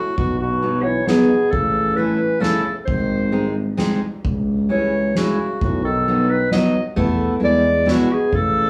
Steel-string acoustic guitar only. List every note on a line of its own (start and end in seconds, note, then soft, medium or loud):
0.62 0.84 F#3 soft
0.62 0.83 B3 soft
0.62 0.84 D#4 medium
1.08 1.28 F#3 medium
1.08 1.29 B3 medium
1.08 1.29 D#4 medium
1.98 2.18 A3 medium
1.98 2.19 C#4 soft
1.98 2.19 E4 medium
2.40 2.62 A3 medium
2.40 2.63 C#4 medium
2.40 2.63 E4 medium
3.32 3.53 G#3 medium
3.32 3.53 C4 soft
3.32 3.54 D#4 medium
3.77 3.99 G#3 medium
3.77 3.99 C4 medium
3.77 4.00 D#4 medium
4.69 4.91 G#3 soft
4.69 4.91 C#4 soft
4.69 4.91 E4 soft
5.16 5.37 G#3 medium
5.16 5.37 C#4 medium
5.16 5.38 E4 medium
6.08 6.28 F#3 medium
6.08 6.28 B3 soft
6.08 6.29 D#4 medium
6.52 6.73 F#3 medium
6.52 6.73 B3 medium
6.52 6.74 D#4 medium
6.96 7.33 A3 medium
6.96 7.33 B3 medium
6.96 7.34 E4 medium
7.40 7.62 G#3 medium
7.40 7.62 B3 soft
7.40 7.62 E4 medium
7.85 8.07 G#3 medium
7.85 8.07 B3 medium
7.85 8.08 E4 medium